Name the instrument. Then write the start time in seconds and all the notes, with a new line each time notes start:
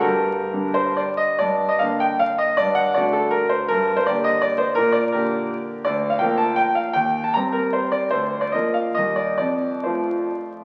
grand piano
0.01 G2 G4 A#4
0.53 D3 G3 D4
0.74 C5
0.97 D5
1.17 D#5
1.39 G2 D5
1.69 D#5
1.79 D3 A#3 D4 F5
2.00 G5
2.19 F5
2.38 D#5
2.57 G2 D5
2.75 F#5
2.94 D3 A3 F#4 D5
3.13 A4
3.31 A#4
3.49 C5
3.68 G2 A#4
3.97 C5
4.06 D3 A#3 G4 D5
4.24 D#5
4.42 D5
4.58 C5
4.75 A#2 A#4
4.92 D5
5.12 D3 A#3 G4 A#4
5.85 D2 D5
6.10 F5
6.19 F3 A#3 A#4 G5
6.37 A5
6.56 G5
6.75 F5
6.93 D#2 G5
7.24 A5
7.34 G3 C4 G4 A#5
7.52 A#4
7.73 C5
7.92 D5
8.11 D2 C5
8.41 D5
8.52 F3 A#3 A#4 D#5
8.74 F5
8.95 D#2 G3 A#3 A#4 D#5
9.16 D5
9.38 F2 D5
9.84 F3 A3 F4 C5